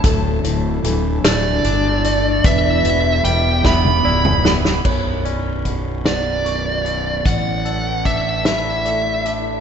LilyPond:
<<
  \new Staff \with { instrumentName = "Lead electric guitar" } { \time 6/8 \key b \minor \tempo 4. = 50 r4. d''4. | e''4 g''8 b''4 r8 | r4. d''4. | fis''4 e''8 e''4 r8 | }
  \new Staff \with { instrumentName = "Felt piano" } { \time 6/8 \key b \minor a'4 a'4 r8 d''8 | b'8 b'4 e''8 d''4 | cis''8 d''4 d''8 cis'''4 | r4 d''4 d''8 e''8 | }
  \new Staff \with { instrumentName = "Ambient pad" } { \time 6/8 \key b \minor <d d' e' fis' a'>2. | <b g'>2. | <b b'>2. | <e' a'>2. | }
  \new Staff \with { instrumentName = "Clean electric guitar" } { \clef bass \time 6/8 \key b \minor d,8 a,8 e8 a8 d'8 a8 | e,8 b,8 g8 b8 e'8 b8 | b,,8 cis'8 b,8 fis8 fis,8 b,8 | a,8 a'8 d'8 e'8 a8 d'8 | }
  \new Staff \with { instrumentName = "Fingered electric bass" } { \clef bass \time 6/8 \key b \minor d,,8 d,,8 d,,8 d,,8 g,,4 | e,,8 e,,8 e,,8 e,,8 cis,,4 | b,,,2. | a,,2. | }
  \new DrumStaff \with { instrumentName = "Drums" } \drummode { \time 6/8 <hh bd>8 hh8 hh8 <hh sn>8 hh8 hh8 | <hh bd>8 hh8 hh8 <bd sn>16 tommh8 toml16 sn16 sn16 | <cymc bd>8 hh8 <hh bd>8 <hh sn>8 hh8 hh8 | <hh bd>8 hh8 <hh bd>8 <hh sn>8 hh8 hh8 | }
>>